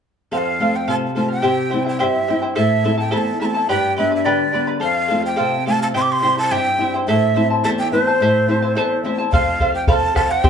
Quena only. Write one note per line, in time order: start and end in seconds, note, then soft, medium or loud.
0.33 0.39 G5 medium
0.38 0.77 F5 medium
0.76 0.89 G5 medium
0.89 0.95 A5 medium
1.18 1.30 A5 medium
1.32 1.83 G5 medium
1.89 1.99 G5 medium
2.00 2.39 E5 medium
2.00 2.04 F5 medium
2.57 2.96 E5 medium
3.00 3.14 G5 medium
3.13 3.19 B5 medium
3.18 3.41 A5 medium
3.41 3.67 A5 medium
3.41 3.46 B5 medium
3.70 3.96 G5 medium
3.98 4.15 E5 medium
4.16 4.26 E5 medium
4.25 4.67 D5 medium
4.83 5.22 F5 medium
5.26 5.64 G5 medium
5.68 5.80 A5 medium
5.82 5.88 A5 medium
5.97 6.03 C6 medium
6.02 6.14 D6 medium
6.12 6.38 C6 medium
6.39 6.53 A5 medium
6.52 6.93 G5 medium
7.08 7.47 E5 medium
7.64 7.70 A5 medium
7.79 7.91 G5 medium
7.92 9.00 C5 medium
9.32 9.71 F5 medium
9.75 9.87 G5 medium
9.89 9.94 B5 medium
9.93 10.14 A5 medium
10.17 10.33 A5 medium
10.31 10.50 G5 medium